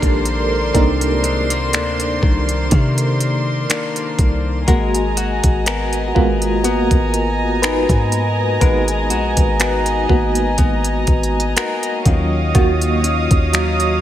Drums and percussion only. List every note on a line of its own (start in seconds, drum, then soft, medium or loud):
0.02 kick medium
0.02 closed hi-hat soft
0.25 closed hi-hat medium
0.75 kick loud
0.75 closed hi-hat medium
1.01 closed hi-hat soft
1.24 closed hi-hat medium
1.50 closed hi-hat medium
1.73 finger snap loud
1.73 closed hi-hat medium
2.00 closed hi-hat soft
2.23 kick medium
2.49 closed hi-hat soft
2.71 kick medium
2.71 closed hi-hat medium
2.98 closed hi-hat soft
3.21 closed hi-hat soft
3.70 finger snap loud
3.70 closed hi-hat medium
3.96 closed hi-hat soft
4.19 kick medium
4.19 closed hi-hat medium
4.68 kick loud
4.68 closed hi-hat medium
4.95 closed hi-hat soft
5.17 closed hi-hat medium
5.44 kick medium
5.44 closed hi-hat medium
5.66 finger snap loud
5.66 closed hi-hat medium
5.93 closed hi-hat soft
6.16 kick medium
6.42 closed hi-hat soft
6.64 closed hi-hat medium
6.91 kick medium
6.91 closed hi-hat soft
7.14 closed hi-hat soft
7.63 finger snap loud
7.63 closed hi-hat medium
7.89 kick medium
7.89 closed hi-hat soft
8.12 closed hi-hat medium
8.61 kick loud
8.61 closed hi-hat medium
8.88 closed hi-hat soft
9.10 closed hi-hat medium
9.37 kick medium
9.37 closed hi-hat medium
9.60 finger snap loud
9.60 closed hi-hat medium
9.86 closed hi-hat soft
10.10 kick medium
10.35 closed hi-hat soft
10.58 kick medium
10.58 closed hi-hat medium
10.85 closed hi-hat soft
11.07 kick medium
11.07 closed hi-hat soft
11.23 closed hi-hat soft
11.40 closed hi-hat soft
11.57 finger snap loud
11.57 closed hi-hat medium
11.83 closed hi-hat soft
12.06 kick medium
12.06 closed hi-hat medium
12.55 kick loud
12.55 closed hi-hat medium
12.82 closed hi-hat soft
13.04 closed hi-hat medium
13.31 kick medium
13.31 closed hi-hat medium
13.53 finger snap medium
13.53 closed hi-hat medium
13.80 closed hi-hat soft